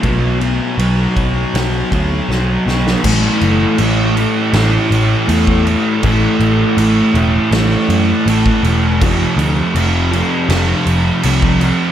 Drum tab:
CC |----------------|x-x-x-x-x-x-x-x-|x-x-x-x-x-x-x-x-|x-x-x-x-x-x-x-x-|
RD |x-x-x-x-x-x-----|----------------|----------------|----------------|
SD |--------o---o-oo|--------o-------|--------o-------|--------o-------|
BD |o-----o---o-----|o------------o--|o------------o--|o------------o--|